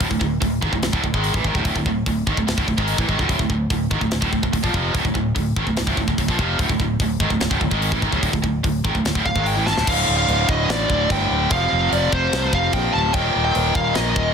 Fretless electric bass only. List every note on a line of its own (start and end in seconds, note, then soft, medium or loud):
0.00 0.11 D1 medium
0.11 0.21 D1 medium
0.21 0.41 D1 medium
0.42 0.62 D1 medium
0.63 0.72 G#1 medium
0.73 0.83 D1 medium
0.84 0.93 D1 medium
0.93 1.03 D1 medium
1.04 1.13 D1 medium
1.14 1.33 G#1 medium
1.34 1.44 A1 loud
1.44 1.54 G#1 loud
1.55 1.65 D1 medium
1.65 1.75 D1 medium
1.75 1.85 D1 medium
1.86 2.06 D1 medium
2.07 2.26 D1 medium
2.27 2.37 G#1 medium
2.38 2.48 D1 medium
2.48 2.57 D1 medium
2.58 2.68 D1 medium
2.68 2.77 D1 medium
2.78 2.98 G#1 medium
2.99 3.08 A1 loud
3.09 3.19 G#1 medium
3.20 3.29 D1 loud
3.30 3.39 D1 medium
3.39 3.49 D1 medium
3.50 3.70 D1 medium
3.70 3.90 D1 medium
3.91 4.02 G#1 medium
4.02 4.12 D1 medium
4.13 4.21 D1 medium
4.22 4.32 D1 medium
4.33 4.43 D1 medium
4.44 4.53 D1 medium
4.53 4.63 D1 medium
4.64 4.73 A#1 medium
4.74 4.93 F1 medium
4.95 5.04 D1 medium
5.05 5.15 D1 medium
5.15 5.35 D1 medium
5.36 5.55 D1 medium
5.57 5.66 G#1 medium
5.67 5.77 D1 medium
5.79 5.87 D1 medium
5.88 5.97 D1 medium
5.97 6.07 D1 medium
6.08 6.18 D1 medium
6.19 6.28 D1 medium
6.29 6.38 A#1 loud
6.39 6.58 F1 medium
6.59 6.69 D1 medium
6.70 6.79 D1 medium
6.80 6.99 D1 medium
7.00 7.19 D1 medium
7.20 7.30 G#1 medium
7.31 7.41 D1 medium
7.41 7.51 D1 medium
7.52 7.61 D1 medium
7.61 7.71 D1 medium
7.71 7.91 G#1 medium
7.92 8.02 A1 loud
8.03 8.12 G#1 medium
8.13 8.22 D1 loud
8.23 8.33 D1 medium
8.34 8.43 D1 medium
8.43 8.63 D1 medium
8.65 8.84 D1 medium
8.85 8.94 G#1 medium
8.95 9.04 D1 medium
9.05 9.15 D1 medium
9.15 9.25 D1 medium
9.26 9.35 D1 medium
9.36 9.55 G#1 medium
9.57 9.67 A1 loud
9.67 9.77 G#1 loud
9.78 9.87 D1 loud
9.88 10.03 D1 medium
10.08 10.24 D1 medium
10.28 10.44 D1 loud
10.49 10.64 D1 medium
10.69 10.84 A1 loud
10.90 11.05 D1 medium
11.10 11.25 G1 medium
11.30 11.46 D1 medium
11.51 11.66 F1 medium
11.72 11.87 F1 medium
11.92 12.07 F1 loud
12.13 12.28 F1 loud
12.33 12.48 C2 loud
12.53 12.68 F1 loud
12.74 12.89 A#1 medium
12.95 13.10 D1 loud
13.15 13.30 D#1 medium
13.36 13.50 D#1 medium
13.56 13.71 D#1 loud
13.75 13.91 D#1 medium
13.98 14.12 A#1 medium
14.17 14.32 D#1 loud